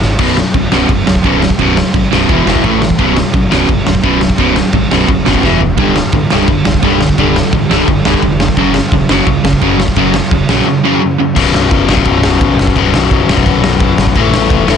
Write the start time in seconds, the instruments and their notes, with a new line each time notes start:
0.02 picked electric bass G#1, snare
0.19 overdriven electric guitar B1 F#2 B2, kick, crash
0.37 overdriven electric guitar B1 F#2, snare
0.54 picked electric bass G#1, overdriven electric guitar B1 F#2, kick, crash
0.72 picked electric bass B0, overdriven electric guitar B1 F#2 B2, snare
0.89 picked electric bass F#1, overdriven electric guitar B1 F#2, kick, crash
1.07 picked electric bass B0, overdriven electric guitar B1 F#2, snare
1.15 kick
1.24 picked electric bass B0, overdriven electric guitar B1 F#2 B2, kick, crash
1.42 overdriven electric guitar B1 F#2, snare
1.50 kick
1.59 picked electric bass B0, overdriven electric guitar B1 F#2 B2, kick, crash
1.77 overdriven electric guitar B1 F#2, snare
1.94 picked electric bass G#1, overdriven electric guitar B1 F#2, kick, crash
2.12 picked electric bass B0, overdriven electric guitar B1 F#2 B2, snare
2.29 picked electric bass E1, overdriven electric guitar E2 B2 E3, kick, crash
2.46 picked electric bass E1, overdriven electric guitar E2 B2 E3, snare
2.55 kick
2.64 picked electric bass A1, overdriven electric guitar A2 E3 A3, kick, crash
2.81 overdriven electric guitar A2 E3, snare
2.90 kick
2.99 picked electric bass B0, overdriven electric guitar B1 F#2 B2, kick, crash
3.16 overdriven electric guitar B1 F#2, snare
3.34 picked electric bass G#1, overdriven electric guitar B1 F#2, kick, crash
3.50 picked electric bass B0, overdriven electric guitar B1 F#2 B2, snare
3.68 picked electric bass F#1, overdriven electric guitar B1 F#2, kick, crash
3.86 picked electric bass B0, overdriven electric guitar B1 F#2, snare
3.95 kick
4.03 picked electric bass B0, overdriven electric guitar B1 F#2 B2, kick, crash
4.21 overdriven electric guitar B1 F#2, snare
4.30 kick
4.38 picked electric bass B0, overdriven electric guitar B1 F#2 B2, kick, crash
4.56 overdriven electric guitar B1 F#2, snare
4.73 picked electric bass G#1, overdriven electric guitar B1 F#2, kick, crash
4.91 picked electric bass B0, overdriven electric guitar B1 F#2 B2, snare
5.08 picked electric bass F#1, overdriven electric guitar B1 F#2, kick, crash
5.26 picked electric bass F#1, overdriven electric guitar B1 F#2 B2, snare
5.34 kick
5.43 picked electric bass E1, overdriven electric guitar E2 B2 E3, kick, snare
5.61 overdriven electric guitar E2 B2, floor tom
5.77 picked electric bass B0, overdriven electric guitar G2 D3 G3, kick, crash
5.96 overdriven electric guitar G2 D3, snare
6.12 picked electric bass A1, overdriven electric guitar G2 D3, kick, crash
6.30 picked electric bass B0, overdriven electric guitar G2 D3 G3, snare
6.48 picked electric bass F#1, overdriven electric guitar G2 D3, kick, crash
6.65 picked electric bass B0, overdriven electric guitar G2 D3, snare
6.74 kick
6.83 picked electric bass B0, overdriven electric guitar G2 D3 G3, kick, crash
7.01 overdriven electric guitar G2 D3, snare
7.09 kick
7.18 picked electric bass B0, overdriven electric guitar G2 D3 G3, kick, crash
7.36 overdriven electric guitar G2 D3, snare
7.53 picked electric bass A1, overdriven electric guitar G2 D3, kick, crash
7.70 picked electric bass B0, overdriven electric guitar G2 D3 G3, snare
7.88 picked electric bass F#1, overdriven electric guitar G2 D3, kick, crash
8.05 picked electric bass B0, overdriven electric guitar G2 D3 G3, snare
8.14 kick
8.22 picked electric bass F1, overdriven electric guitar G2 D3, kick, crash
8.40 overdriven electric guitar G2 D3, snare
8.48 kick
8.57 picked electric bass F#1, overdriven electric guitar F#2 C#3 F#3, kick, crash
8.74 overdriven electric guitar F#2 C#3, snare
8.92 picked electric bass E1, overdriven electric guitar F#2 C#3, kick, crash
9.09 picked electric bass F#1, overdriven electric guitar F#2 C#3 F#3, snare
9.27 picked electric bass C#2, overdriven electric guitar F#2 C#3, kick, crash
9.44 picked electric bass F#1, overdriven electric guitar F#2 C#3, snare
9.53 kick
9.61 picked electric bass F#1, overdriven electric guitar F#2 C#3 F#3, kick, crash
9.79 overdriven electric guitar F#2 C#3, snare
9.88 kick
9.96 picked electric bass F#1, overdriven electric guitar F#2 C#3 F#3, kick, crash
10.14 overdriven electric guitar F#2 C#3, snare
10.31 picked electric bass E1, overdriven electric guitar F#2 C#3, kick, crash
10.49 picked electric bass A#1, overdriven electric guitar F#2 C#3 F#3, snare
10.67 overdriven electric guitar F#2 C#3
10.84 overdriven electric guitar F#2 C#3 F#3
11.02 overdriven electric guitar F#2 C#3
11.20 overdriven electric guitar F#2 C#3
11.35 picked electric bass B0, overdriven electric guitar B1 F#2 B2, kick, crash
11.54 picked electric bass B0, snare
11.71 picked electric bass F#1, kick, crash
11.88 picked electric bass F#1, overdriven electric guitar B1 F#2 B2, snare
11.97 kick
12.05 picked electric bass B0, kick, crash
12.23 picked electric bass B0, snare
12.41 picked electric bass B0, kick, crash
12.59 picked electric bass F#1, snare
12.67 kick
12.76 picked electric bass B0, overdriven electric guitar B1 F#2 B2, kick, crash
12.94 picked electric bass B0, snare
13.11 picked electric bass B0, kick, crash
13.28 picked electric bass B0, overdriven electric guitar B1 F#2 B2, snare
13.37 kick
13.45 picked electric bass B0, kick, crash
13.63 picked electric bass B0, snare
13.80 picked electric bass B0, kick, crash
13.98 picked electric bass G#1, snare
14.07 kick
14.15 picked electric bass A1, overdriven electric guitar A2 E3 A3, kick, crash
14.32 picked electric bass A1, snare
14.50 picked electric bass E1, kick, crash
14.67 picked electric bass E1, overdriven electric guitar A2 E3 A3, snare